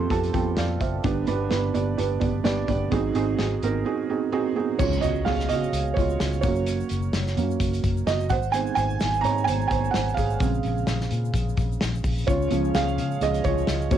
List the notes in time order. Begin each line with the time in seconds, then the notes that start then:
Already playing: C3 C4 F4 G4 A4 B4 C5 C6
0.10 F2 C4 F4 G4 A4 A5, kick, closed hi-hat
0.24 closed hi-hat
0.33 F2 C4 F4 G4 A4 G5, kick, closed hi-hat
0.57 F2 D5 F5, snare, closed hi-hat
0.81 F#1 C5 E5, kick, closed hi-hat
1.04 G1 G2 D3 B3 D4 G4 B4, kick, closed hi-hat
1.27 G1 B3 D4 G4 B4, closed hi-hat
1.50 G1 B3 D4 G4 B4, snare, closed hi-hat
1.74 G1 B3 D4 G4 D5, closed hi-hat
1.98 G1 B3 D4 G4 B4, closed hi-hat
2.20 G1 B3 D4 G4 D5, kick, closed hi-hat
2.44 G1 B3 D4 G4 D5, snare, closed hi-hat
2.68 G1 B3 D4 G4 D5, kick, closed hi-hat
2.91 G#1 G#2 D#3 C4 D#4 F#4 G#4, kick, closed hi-hat
3.15 G#1 C4 D#4 F#4 G#4, closed hi-hat
3.38 G#1 C4 D#4 F#4 G#4, snare, closed hi-hat
3.63 G#1 C4 D#4 F#4 A#4, closed hi-hat
3.85 C4 D#4 F#4 G#4
4.09 C4 D#4 F#4 G#4
4.32 C4 D#4 F#4 G#4
4.56 C4 D#4 F#4 G#4
4.79 C#2 C#3 G#3 C#4 F4 C#5, kick, crash, impact, shaker
4.93 shaker
5.01 C#2 F#4 D#5, closed hi-hat, shaker
5.15 shaker
5.25 C#2 G#4 F5, snare, closed hi-hat, shaker
5.40 snare, shaker
5.49 C#3 F#4 D#5, closed hi-hat, shaker
5.64 shaker
5.73 C#2, closed hi-hat, shaker
5.87 shaker
5.94 C#2 F4 C#5, kick, closed hi-hat, shaker
6.10 shaker
6.20 C#2, snare, closed hi-hat, shaker
6.33 shaker
6.41 F#1 F#3 A#3 C#4 F#4 C#5, kick, closed hi-hat, shaker
6.55 shaker
6.66 closed hi-hat, shaker
6.80 shaker
6.89 F#1, closed hi-hat, shaker
7.02 shaker
7.13 F#1, snare, closed hi-hat, shaker
7.27 snare, shaker
7.36 F#2 F#3 A#3 C#4, closed hi-hat, shaker
7.51 shaker
7.60 F#1, kick, closed hi-hat, shaker
7.73 closed hi-hat, shaker
7.84 F#1, kick, closed hi-hat, shaker
7.97 shaker
8.07 F#1 F#4 D#5, snare, closed hi-hat, shaker
8.21 shaker
8.29 G#1 C5 F#5, kick, closed hi-hat, shaker
8.42 shaker
8.52 D#3 G#3 C4 C5 G#5, closed hi-hat, shaker
8.66 shaker
8.75 G#1 C5 G#5, closed hi-hat, shaker
8.90 shaker
9.00 G#1, snare, closed hi-hat, shaker
9.14 shaker
9.21 G#2 D#3 G#3 C4 C#5 A#5, closed hi-hat
9.25 shaker
9.38 shaker
9.44 G#1 C5 G#5, closed hi-hat, shaker
9.61 shaker
9.68 G#1 G#5, kick, closed hi-hat, shaker
9.72 C5
9.84 shaker
9.91 G#1 F#5, snare, closed hi-hat
9.95 C5, shaker
10.09 shaker
10.14 G#1 G#4 F5, kick, closed hi-hat, shaker
10.30 shaker
10.40 A#1 C#3 G#3 C4, kick, closed hi-hat, shaker
10.55 shaker
10.63 A#1, closed hi-hat, shaker
10.78 shaker
10.87 A#1, snare, closed hi-hat, shaker
11.01 snare, shaker
11.11 A#2, closed hi-hat, shaker
11.25 shaker
11.34 A#1, kick, closed hi-hat, shaker
11.49 shaker
11.57 A#1, kick, closed hi-hat, shaker
11.72 shaker
11.81 A#1, snare, closed hi-hat, shaker
11.95 shaker
12.04 A#1, kick, open hi-hat, shaker
12.18 shaker
12.27 C#2 C#3 C#4 F4 C#5, kick, closed hi-hat, shaker
12.42 shaker
12.50 C#2 F3 G#3 C#4, closed hi-hat, shaker
12.64 shaker
12.74 C#2 G#4 F5, snare, closed hi-hat, shaker
12.88 shaker
12.98 C#3, closed hi-hat, shaker
13.11 shaker
13.21 C#2 F3 G#3 C#4 G#4 D#5, closed hi-hat, shaker
13.34 closed hi-hat, shaker
13.44 C#2 F3 F4 C#5, kick, closed hi-hat, shaker
13.58 shaker
13.67 C#2, snare, closed hi-hat, shaker
13.81 shaker
13.91 F#1 F#3 A#3 C#4 F#4 C#5, kick, closed hi-hat, shaker